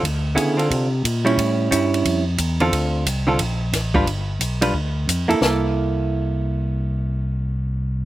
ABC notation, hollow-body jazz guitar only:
X:1
M:4/4
L:1/8
Q:"Swing" 1/4=179
K:Cmix
V:1 name="Hollow-body jazz guitar"
z2 [_D,=B,E_A] [=D,CF=A]2 z2 [G,_DE]- | [G,_DE]2 [G,^CE]3 z2 [=D,=CFA]- | [D,CFA]2 z [D,CFA] z3 [G,DF=B] | z3 [G,DF=B] z3 [_B,EA] |
[B,EA]8- | [B,EA]8 |]